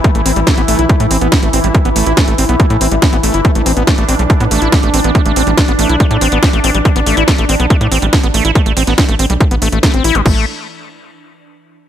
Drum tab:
CC |----------------|----------------|----------------|----------------|
HH |xxoxxxoxxxoxxxox|xxoxxxoxxxoxxxox|xxoxxxoxxxoxxxox|xxoxxxoxxxoxxxox|
SD |----o-------o---|----o-------o---|----o-------o---|----o-------o---|
BD |o---o---o---o---|o---o---o---o---|o---o---o---o---|o---o---o---o---|

CC |----------------|----------------|x---------------|
HH |xxoxxxoxxxoxxxox|xxoxxxoxxxoxxxox|----------------|
SD |----o-------o---|---oo-------o---|----------------|
BD |o---o---o---o---|o---o---o---o---|o---------------|